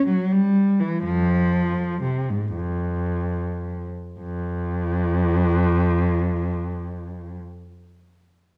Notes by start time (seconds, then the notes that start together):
0.07 F#3
0.32 G3
0.80 E3
1.04 F2 F3
2.02 C3
2.30 G#2
2.55 F2
4.20 F2